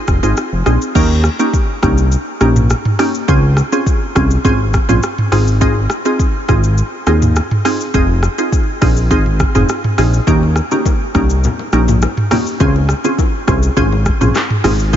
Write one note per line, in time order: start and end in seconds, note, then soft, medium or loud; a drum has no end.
0.08 0.19 F1 medium
0.08 kick loud
0.08 cross-stick medium
0.08 shaker soft
0.23 0.34 G#1 medium
0.23 0.42 C4 medium
0.23 0.43 D#4 medium
0.23 0.43 F4 medium
0.23 0.43 G#4 medium
0.23 shaker medium
0.37 cross-stick medium
0.37 shaker medium
0.52 0.63 F1 medium
0.66 0.78 A#1 medium
0.66 0.86 C4 medium
0.66 0.86 D#4 medium
0.66 0.86 F4 medium
0.66 0.87 G#4 medium
0.66 cross-stick medium
0.66 shaker medium
0.82 shaker medium
0.95 1.29 D#2 loud
0.95 1.36 A#3 loud
0.95 1.36 C#4 medium
0.95 1.36 D#4 medium
0.95 1.36 G4 loud
0.95 kick loud
0.95 crash loud
0.95 shaker medium
1.24 cross-stick medium
1.24 shaker medium
1.39 1.59 A#3 medium
1.39 1.59 C#4 medium
1.39 1.59 D#4 medium
1.39 1.59 G4 medium
1.39 shaker medium
1.54 kick medium
1.54 shaker medium
1.82 2.16 C2 loud
1.82 2.03 A#3 medium
1.82 2.03 C#4 medium
1.82 2.03 D#4 medium
1.82 2.03 G4 medium
1.82 kick loud
1.82 cross-stick loud
1.82 shaker medium
1.98 shaker medium
2.12 shaker medium
2.41 2.74 A#1 medium
2.41 2.61 A#3 medium
2.41 2.61 C#4 medium
2.41 2.61 D#4 medium
2.41 2.61 G4 medium
2.41 cross-stick medium
2.41 shaker medium
2.56 mid tom loud
2.56 shaker medium
2.70 cross-stick medium
2.70 shaker medium
2.85 mid tom loud
2.99 3.26 A#3 medium
2.99 3.26 C#4 medium
2.99 3.26 D#4 medium
2.99 3.26 G4 medium
2.99 cross-stick loud
2.99 open hi-hat medium
2.99 shaker medium
3.15 shaker medium
3.28 3.62 C#2 loud
3.28 3.48 C4 medium
3.28 3.48 C#4 medium
3.28 3.49 F4 medium
3.28 3.49 G#4 loud
3.28 kick loud
3.28 shaker medium
3.57 cross-stick medium
3.57 shaker medium
3.72 4.12 C4 medium
3.72 4.12 C#4 medium
3.72 4.12 F4 medium
3.72 4.13 G#4 medium
3.72 shaker medium
3.86 kick medium
3.86 shaker medium
4.15 4.38 C2 medium
4.15 4.42 C4 medium
4.15 4.43 C#4 medium
4.15 4.43 F4 medium
4.15 4.43 G#4 medium
4.15 kick loud
4.15 cross-stick loud
4.15 shaker medium
4.31 shaker medium
4.45 4.78 G#1 medium
4.45 4.65 C4 loud
4.45 4.65 C#4 medium
4.45 4.65 F4 medium
4.45 4.65 G#4 loud
4.45 kick medium
4.45 shaker medium
4.74 kick loud
4.74 cross-stick loud
4.74 shaker medium
4.89 5.00 A#1 loud
4.89 5.08 C4 medium
4.89 5.08 C#4 medium
4.89 5.09 F4 medium
4.89 5.09 G#4 medium
4.89 mid tom medium
4.89 shaker medium
5.03 cross-stick medium
5.03 shaker medium
5.18 mid tom loud
5.32 5.87 G#1 medium
5.32 5.52 C4 medium
5.32 5.52 D#4 medium
5.32 5.52 F4 medium
5.32 5.52 G#4 medium
5.32 cross-stick loud
5.32 open hi-hat medium
5.32 shaker medium
5.48 shaker medium
5.61 6.02 C4 medium
5.61 6.02 D#4 medium
5.61 6.02 F4 medium
5.61 6.02 G#4 loud
5.61 kick loud
5.61 shaker medium
5.90 cross-stick loud
5.90 shaker medium
6.05 6.25 C4 medium
6.05 6.25 D#4 medium
6.05 6.25 F4 medium
6.05 6.25 G#4 medium
6.05 shaker medium
6.19 kick medium
6.19 shaker medium
6.48 6.82 G#1 medium
6.48 6.69 C4 medium
6.48 6.69 D#4 medium
6.48 6.69 F4 medium
6.48 6.69 G#4 medium
6.48 kick loud
6.48 cross-stick loud
6.48 shaker medium
6.64 shaker medium
6.78 shaker medium
7.07 7.40 D#2 loud
7.07 7.27 C4 medium
7.07 7.27 D#4 medium
7.07 7.27 F4 medium
7.07 7.27 G#4 medium
7.07 cross-stick medium
7.07 shaker medium
7.22 mid tom loud
7.22 shaker medium
7.36 cross-stick medium
7.36 shaker medium
7.51 mid tom loud
7.65 7.92 C4 medium
7.65 7.92 D#4 medium
7.65 7.92 F4 medium
7.65 7.92 G#4 medium
7.65 cross-stick loud
7.65 open hi-hat medium
7.65 shaker medium
7.81 shaker medium
7.94 8.28 F1 loud
7.94 8.14 C4 medium
7.94 8.14 D#4 medium
7.94 8.15 F4 medium
7.94 8.15 G#4 loud
7.94 kick loud
7.94 shaker medium
8.23 cross-stick medium
8.23 shaker medium
8.38 8.78 C4 medium
8.38 8.78 D#4 medium
8.38 8.78 F4 medium
8.38 8.79 G#4 medium
8.38 shaker medium
8.52 kick medium
8.52 shaker medium
8.81 9.12 A#1 loud
8.81 9.09 C4 medium
8.81 9.09 D#4 medium
8.81 9.09 F4 medium
8.81 9.09 G#4 medium
8.81 kick loud
8.81 cross-stick loud
8.81 open hi-hat medium
8.81 shaker medium
8.97 shaker medium
9.11 9.44 G#1 loud
9.11 9.31 C4 loud
9.11 9.31 D#4 medium
9.11 9.31 F4 medium
9.11 9.31 G#4 loud
9.11 kick loud
9.11 shaker medium
9.26 mid tom medium
9.40 kick loud
9.40 cross-stick loud
9.40 shaker medium
9.55 9.66 F1 loud
9.55 9.74 C4 medium
9.55 9.74 D#4 medium
9.55 9.75 F4 medium
9.55 9.75 G#4 medium
9.55 mid tom medium
9.55 shaker medium
9.69 cross-stick medium
9.69 shaker medium
9.84 mid tom loud
9.98 10.20 A#1 medium
9.98 10.18 C4 medium
9.98 10.18 D#4 medium
9.98 10.18 F4 medium
9.98 10.19 G#4 medium
9.98 cross-stick loud
9.98 open hi-hat medium
9.98 shaker medium
10.14 shaker medium
10.27 10.61 D#2 loud
10.27 10.68 A#3 medium
10.27 10.68 C#4 medium
10.27 10.68 D#4 medium
10.27 10.68 G4 loud
10.27 kick loud
10.27 low conga medium
10.27 shaker medium
10.43 high bongo soft
10.56 cross-stick medium
10.56 shaker medium
10.71 10.91 A#3 medium
10.71 10.91 C#4 medium
10.71 10.91 D#4 medium
10.71 10.91 G4 medium
10.71 low bongo medium
10.71 shaker medium
10.86 kick medium
10.86 high bongo medium
10.86 shaker medium
11.15 11.48 C2 loud
11.15 11.35 A#3 medium
11.15 11.35 C#4 medium
11.15 11.35 D#4 medium
11.15 11.35 G4 medium
11.15 kick loud
11.15 cross-stick loud
11.15 shaker medium
11.30 shaker medium
11.44 low conga medium
11.44 shaker medium
11.59 high bongo medium
11.73 12.06 A#1 loud
11.73 11.93 A#3 medium
11.73 11.93 C#4 medium
11.73 11.93 D#4 medium
11.73 11.93 G4 medium
11.73 cross-stick medium
11.73 shaker medium
11.88 mid tom medium
11.88 low bongo medium
11.88 shaker medium
12.02 cross-stick medium
12.02 high bongo medium
12.02 shaker medium
12.17 mid tom loud
12.31 12.58 A#3 medium
12.31 12.58 C#4 medium
12.31 12.58 D#4 medium
12.31 12.58 G4 medium
12.31 cross-stick loud
12.31 open hi-hat medium
12.31 low bongo medium
12.31 low conga medium
12.31 shaker medium
12.47 shaker medium
12.60 12.94 C#2 loud
12.60 12.80 C4 medium
12.60 12.80 C#4 medium
12.60 12.81 F4 medium
12.60 12.81 G#4 loud
12.60 kick loud
12.60 low conga medium
12.60 shaker medium
12.76 high bongo soft
12.89 cross-stick medium
12.89 shaker medium
13.04 13.44 C4 medium
13.04 13.44 C#4 medium
13.04 13.45 F4 medium
13.04 13.45 G#4 medium
13.04 low bongo medium
13.04 shaker medium
13.19 kick medium
13.19 high bongo medium
13.19 shaker medium
13.47 13.70 C2 medium
13.47 13.74 C4 medium
13.47 13.75 C#4 medium
13.47 13.75 F4 medium
13.47 13.75 G#4 medium
13.47 kick loud
13.47 cross-stick loud
13.47 shaker medium
13.63 shaker medium
13.77 14.10 G#1 medium
13.77 13.97 C4 loud
13.77 13.97 C#4 medium
13.77 13.97 F4 medium
13.77 13.97 G#4 loud
13.77 kick loud
13.77 low conga medium
13.77 shaker medium
13.92 high bongo medium
14.06 kick loud
14.06 cross-stick medium
14.06 shaker medium
14.21 14.32 A#1 loud
14.21 14.40 C4 medium
14.21 14.41 C#4 medium
14.21 14.41 F4 medium
14.21 14.41 G#4 medium
14.21 mid tom medium
14.21 low bongo medium
14.21 shaker medium
14.35 cross-stick medium
14.35 clap medium
14.35 high bongo medium
14.35 shaker medium
14.50 mid tom loud
14.64 14.97 G#1 medium
14.64 14.84 C4 medium
14.64 14.84 D#4 medium
14.64 14.84 F4 medium
14.64 14.85 G#4 medium
14.64 cross-stick loud
14.64 open hi-hat medium
14.64 low bongo medium
14.64 low conga medium
14.64 shaker medium
14.80 shaker medium
14.93 14.97 C4 loud
14.93 14.97 D#4 medium
14.93 14.97 F4 medium
14.93 kick loud
14.93 shaker medium